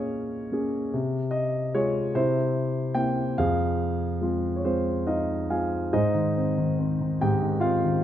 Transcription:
0.00 0.90 A#2 medium
0.00 0.52 A#3 soft
0.00 0.52 C#4 soft
0.00 0.53 G#4 soft
0.00 0.96 C#5 medium
0.00 0.95 D#5 medium
0.00 0.95 F5 medium
0.52 0.92 A#3 soft
0.52 0.92 C#4 soft
0.52 0.93 G#4 soft
0.94 2.11 C3 medium
1.31 1.74 D#5 medium
1.75 2.14 G#3 soft
1.75 2.14 F4 soft
1.75 2.14 G#4 soft
1.75 2.16 C#5 medium
2.15 3.33 C3 medium
2.15 2.94 E4 medium
2.15 2.98 C5 medium
2.95 3.35 A#3 soft
2.95 3.36 C4 soft
2.95 3.36 E4 soft
2.95 3.38 G5 medium
3.38 5.90 F2 medium
3.38 5.47 G#4 medium
3.38 5.06 F5 medium
4.21 4.63 G#3 soft
4.21 4.63 C4 soft
4.21 4.64 F4 soft
4.56 4.64 C#5 soft
4.65 5.48 G#3 soft
4.65 5.05 C4 soft
4.65 5.48 F4 soft
4.65 5.09 C5 medium
5.07 5.47 D#4 soft
5.07 5.51 D#5 medium
5.07 5.47 F5 soft
5.50 5.92 G#3 soft
5.50 5.92 C4 soft
5.50 5.92 F4 soft
5.50 5.94 F5 medium
5.50 5.90 G#5 soft
5.93 7.21 G#2 medium
5.93 7.16 D#4 medium
5.93 7.16 G#4 medium
5.93 7.16 C5 medium
5.93 7.24 D#5 medium
6.14 6.56 D#3 soft
6.37 6.78 C4 soft
6.58 7.00 D#3 soft
6.79 7.62 C4 soft
7.01 7.40 D#3 soft
7.21 8.04 G#2 medium
7.21 7.59 G4 medium
7.21 7.64 G5 medium
7.42 7.83 D#3 soft
7.60 8.04 C4 soft
7.60 7.99 F4 medium
7.60 8.04 F5 medium
7.84 8.04 D#3 soft

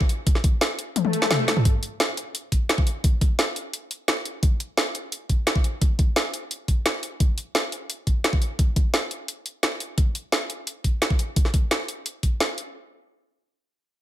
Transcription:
0.01 kick loud
0.09 closed hi-hat medium
0.27 kick loud
0.27 closed hi-hat medium
0.35 snare soft
0.44 kick loud
0.44 closed hi-hat medium
0.61 snare loud
0.61 closed hi-hat loud
0.79 closed hi-hat medium
0.96 closed hi-hat medium
0.96 high tom medium
0.96 swell medium
1.05 high tom medium
1.13 closed hi-hat medium
1.22 snare medium
1.31 snare loud
1.31 closed hi-hat medium
1.31 mid tom medium
1.48 snare medium
1.48 closed hi-hat medium
1.57 mid tom medium
1.65 kick loud
1.65 closed hi-hat medium
1.83 closed hi-hat medium
2.00 snare loud
2.00 closed hi-hat medium
2.17 closed hi-hat medium
2.35 closed hi-hat medium
2.52 kick medium
2.52 closed hi-hat medium
2.69 snare loud
2.69 closed hi-hat medium
2.78 kick loud
2.87 closed hi-hat medium
3.04 kick loud
3.04 closed hi-hat medium
3.21 kick loud
3.21 closed hi-hat medium
3.39 snare loud
3.39 closed hi-hat medium
3.56 closed hi-hat medium
3.73 closed hi-hat medium
3.91 closed hi-hat medium
4.08 snare loud
4.08 closed hi-hat medium
4.25 closed hi-hat medium
4.43 kick loud
4.43 closed hi-hat medium
4.60 closed hi-hat medium
4.78 snare loud
4.78 closed hi-hat medium
4.95 closed hi-hat medium
5.12 closed hi-hat medium
5.29 kick medium
5.29 closed hi-hat medium
5.47 snare loud
5.47 closed hi-hat medium
5.55 kick loud
5.64 closed hi-hat medium
5.82 kick loud
5.82 closed hi-hat medium
5.99 kick loud
5.99 closed hi-hat medium
6.16 snare loud
6.16 closed hi-hat medium
6.34 closed hi-hat medium
6.51 closed hi-hat medium
6.68 kick medium
6.68 closed hi-hat medium
6.86 snare loud
6.86 closed hi-hat medium
7.03 closed hi-hat medium
7.20 kick loud
7.20 closed hi-hat medium
7.38 closed hi-hat medium
7.55 snare loud
7.55 closed hi-hat medium
7.72 closed hi-hat medium
7.90 closed hi-hat medium
8.07 kick medium
8.07 closed hi-hat medium
8.24 snare loud
8.24 closed hi-hat medium
8.33 kick loud
8.42 closed hi-hat medium
8.59 kick loud
8.59 closed hi-hat medium
8.76 kick loud
8.76 closed hi-hat medium
8.94 snare loud
8.94 closed hi-hat medium
9.11 closed hi-hat medium
9.28 closed hi-hat medium
9.46 closed hi-hat medium
9.63 snare loud
9.63 closed hi-hat medium
9.80 closed hi-hat medium
9.98 kick loud
9.98 closed hi-hat medium
10.15 closed hi-hat medium
10.32 snare loud
10.32 closed hi-hat medium
10.50 closed hi-hat medium
10.67 closed hi-hat medium
10.84 kick medium
10.84 closed hi-hat medium
11.02 snare loud
11.02 closed hi-hat medium
11.10 kick loud
11.19 closed hi-hat medium
11.36 kick loud
11.36 closed hi-hat medium
11.45 snare soft
11.54 kick loud
11.54 closed hi-hat medium
11.71 snare loud
11.71 closed hi-hat medium
11.88 closed hi-hat medium
12.06 closed hi-hat medium
12.23 kick medium
12.23 closed hi-hat medium
12.40 snare loud
12.40 closed hi-hat medium
12.58 closed hi-hat medium

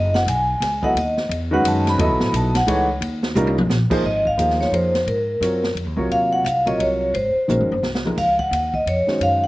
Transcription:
0.00 0.26 F#1 medium
0.00 0.14 D#5 medium
0.14 0.27 F#5 medium
0.14 snare medium
0.26 0.60 B1 medium
0.26 0.80 G#5 medium
0.26 hi-hat pedal medium
0.26 ride medium
0.60 0.94 C#2 medium
0.60 snare soft
0.60 ride medium
0.82 0.94 F#3 medium
0.82 0.94 B3 medium
0.82 0.95 E4 medium
0.82 0.95 A4 medium
0.82 0.95 D#5 medium
0.82 0.96 F#5 loud
0.82 kick medium
0.95 1.29 D#2 medium
0.95 1.29 D#5 medium
0.95 ride medium
1.17 snare soft
1.29 1.63 E2 medium
1.29 ride medium
1.51 1.96 D#3 medium
1.51 1.96 G#3 medium
1.51 1.97 C#4 medium
1.51 1.97 F#4 medium
1.51 1.97 B4 medium
1.51 1.65 F#5 medium
1.64 1.97 F#2 medium
1.64 hi-hat pedal medium
1.64 ride medium
1.68 1.87 A5 medium
1.87 2.32 B5 loud
1.87 snare soft
1.87 ride soft
1.98 2.10 D#2 loud
1.98 2.50 F#3 medium
1.98 2.50 B3 medium
1.98 2.50 E4 medium
1.98 2.50 A4 medium
1.98 2.51 D#5 medium
1.98 ride medium
2.10 2.21 B1 medium
2.20 2.32 A1 medium
2.20 snare medium
2.33 2.66 B1 loud
2.33 2.55 A5 medium
2.33 hi-hat pedal medium
2.33 ride medium
2.55 2.87 F#5 loud
2.55 snare medium
2.55 ride medium
2.67 3.00 C#2 medium
2.67 2.86 E3 medium
2.67 2.86 A3 medium
2.67 2.86 D#4 medium
2.67 2.87 G#4 medium
2.67 2.87 C#5 medium
2.67 ride medium
3.01 3.34 D#2 medium
3.01 ride medium
3.23 snare medium
3.35 3.69 C2 loud
3.35 3.55 G3 medium
3.35 3.55 C#4 medium
3.35 3.55 D#4 medium
3.35 3.55 F4 medium
3.35 3.56 A#4 medium
3.35 hi-hat pedal medium
3.35 high tom medium
3.47 high tom medium
3.58 mid tom loud
3.69 3.90 A#1 medium
3.69 snare medium
3.69 hi-hat pedal medium
3.90 4.02 F3 medium
3.90 4.03 A#3 medium
3.90 4.03 D#4 medium
3.90 4.03 G#4 medium
3.90 4.03 C5 medium
3.90 muted upright bass stroke soft
3.90 kick medium
3.90 crash medium
4.03 4.37 G#1 medium
4.03 4.27 D#5 medium
4.25 4.62 F5 medium
4.25 kick soft
4.37 4.71 D#2 medium
4.37 4.70 F3 medium
4.37 4.71 A#3 medium
4.37 4.71 D#4 medium
4.37 4.71 G#4 medium
4.37 4.72 C5 medium
4.37 hi-hat pedal soft
4.37 ride medium
4.50 snare soft
4.61 4.72 C#5 medium
4.61 snare soft
4.71 5.05 F2 medium
4.71 4.92 F3 medium
4.71 4.92 A#3 soft
4.71 4.92 D#4 soft
4.71 4.92 G#4 soft
4.71 4.92 A#4 medium
4.71 5.06 C5 medium
4.71 ride medium
4.95 snare soft
4.95 ride soft
5.06 5.40 G#2 medium
5.06 5.72 A#4 medium
5.06 ride soft
5.41 5.75 F#2 medium
5.41 5.61 F#3 medium
5.41 5.61 C4 medium
5.41 5.61 F4 medium
5.41 5.61 A#4 medium
5.41 5.61 C#5 medium
5.41 hi-hat pedal medium
5.41 ride medium
5.64 snare soft
5.75 5.86 F2 medium
5.75 ride medium
5.86 5.97 D#2 medium
5.96 6.09 C2 medium
5.96 6.42 C3 medium
5.96 6.42 F#3 medium
5.96 6.42 F4 medium
5.96 6.43 A#4 medium
5.96 6.43 C#5 medium
6.09 6.43 D#2 medium
6.09 6.21 F5 loud
6.09 ride soft
6.33 6.38 F#5 medium
6.44 6.78 C2 medium
6.44 6.65 F5 medium
6.44 hi-hat pedal medium
6.44 ride medium
6.66 7.11 C3 medium
6.66 7.11 F#3 medium
6.66 7.12 F4 medium
6.66 7.12 A#4 medium
6.66 7.12 C#5 medium
6.66 6.79 D#5 medium
6.66 ride soft
6.79 7.13 C2 medium
6.79 7.12 C#5 medium
6.79 ride medium
7.14 7.34 G#1 medium
7.14 7.79 C5 medium
7.14 ride soft
7.35 muted upright bass stroke soft
7.48 7.60 A#1 medium
7.48 7.67 D#3 medium
7.48 7.68 G#3 medium
7.48 7.68 C#4 medium
7.48 7.68 F#4 medium
7.48 7.68 A#4 medium
7.48 hi-hat pedal medium
7.48 mid tom soft
7.60 7.70 G#1 soft
7.60 mid tom soft
7.71 7.82 F#1 medium
7.71 floor tom medium
7.83 8.16 C2 medium
7.83 snare medium
7.95 snare medium
8.04 8.16 F3 medium
8.04 8.16 A#3 medium
8.04 8.17 D#4 medium
8.04 8.17 G#4 soft
8.04 8.17 A#4 medium
8.04 mid tom medium
8.17 8.50 C#2 medium
8.17 8.28 F5 loud
8.17 kick medium
8.17 crash medium
8.39 8.71 F#5 medium
8.39 kick soft
8.51 8.85 D#2 medium
8.51 hi-hat pedal soft
8.51 ride medium
8.74 8.87 D#5 medium
8.74 kick soft
8.86 9.06 F2 medium
8.86 9.23 C#5 medium
8.86 ride medium
9.07 9.47 D#3 medium
9.07 9.47 G#3 medium
9.07 9.47 C#4 medium
9.07 9.47 F#4 medium
9.07 9.47 C5 medium
9.07 muted upright bass stroke soft
9.07 snare soft
9.20 9.47 F#2 medium
9.20 9.42 F5 loud
9.20 ride medium
9.44 9.47 F#5 medium

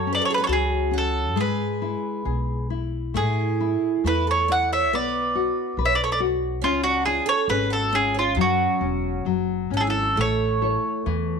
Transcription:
0.00 0.19 F#2 medium
0.00 1.32 F#3 medium
0.00 0.11 A4 medium
0.00 0.14 C#5 medium
0.07 0.48 C#4 medium
0.13 0.21 B4 medium
0.13 0.23 D5 medium
0.22 0.30 A4 medium
0.22 0.33 C#5 medium
0.30 0.37 G#4 medium
0.30 0.41 B4 medium
0.38 0.47 F#4 medium
0.38 0.47 A4 medium
0.44 0.51 A4 medium
0.44 0.47 C#5 medium
0.48 1.35 C#2 medium
0.48 0.89 C#4 medium
0.48 0.90 F#4 medium
0.53 0.95 G#4 medium
0.91 1.34 C#4 medium
0.91 1.34 F#4 medium
0.98 1.40 A4 medium
1.35 1.93 G#2 medium
1.35 3.12 G#3 medium
1.35 2.67 G#4 medium
1.41 2.69 B4 medium
1.82 2.25 E4 soft
2.25 3.16 B1 medium
2.25 2.69 G#4 soft
2.70 3.14 E4 soft
3.14 3.73 A2 medium
3.14 4.03 A3 medium
3.14 4.01 E4 medium
3.14 4.08 G#4 medium
3.60 4.03 E4 soft
4.04 4.92 E2 medium
4.04 4.47 A3 soft
4.04 4.26 E4 medium
4.04 4.26 B4 medium
4.27 4.47 A4 medium
4.27 4.51 C#5 medium
4.48 4.90 E4 soft
4.48 4.68 D5 medium
4.48 4.70 F#5 medium
4.73 4.91 C#5 medium
4.73 4.93 E5 medium
4.92 5.47 B1 medium
4.92 6.58 B3 medium
4.92 5.81 B4 medium
4.92 5.82 D5 medium
5.35 5.76 F#4 soft
5.77 6.63 B1 medium
5.77 6.19 B4 medium
5.85 5.93 C#5 medium
5.85 5.93 E5 medium
5.95 6.02 B4 medium
5.95 6.03 D5 medium
6.04 6.11 A4 medium
6.04 6.11 C#5 medium
6.12 6.19 B4 medium
6.12 6.20 D5 medium
6.20 6.61 F#4 medium
6.62 7.19 C#2 medium
6.62 6.81 C#4 medium
6.62 7.05 C#4 medium
6.62 6.83 F4 medium
6.84 7.03 D4 medium
6.84 7.03 F#4 medium
7.05 7.48 C#4 medium
7.05 7.25 F4 medium
7.05 7.27 G#4 medium
7.26 7.46 A4 medium
7.26 7.49 C#5 loud
7.48 8.38 G#1 medium
7.48 7.92 C#4 medium
7.48 7.69 G#4 medium
7.48 7.71 B4 medium
7.70 7.90 F#4 medium
7.70 7.94 A4 medium
7.93 8.35 C#4 medium
7.93 8.13 F4 medium
7.93 8.16 G#4 medium
8.15 8.34 C#4 medium
8.19 8.37 F4 medium
8.35 8.65 F#2 medium
8.35 9.25 F#3 medium
8.35 9.21 C#4 medium
8.41 9.24 F#4 medium
8.81 9.21 E1 medium
8.81 9.24 C#4 soft
9.25 9.67 F#1 medium
9.25 9.70 F#3 medium
9.70 10.12 G#1 medium
9.70 9.77 F#3 medium
9.70 10.15 C#4 soft
9.77 9.84 E3 soft
9.77 9.86 G#4 medium
9.77 9.81 A4 medium
9.87 10.15 F#3 soft
9.87 10.20 A4 medium
10.16 10.75 A1 medium
10.16 11.40 A3 medium
10.16 10.61 A3 medium
10.21 11.40 C#5 medium
10.62 11.33 E4 soft
10.62 11.33 A4 soft
10.62 11.33 C#5 soft
11.06 11.40 E2 medium
11.06 11.40 E3 medium

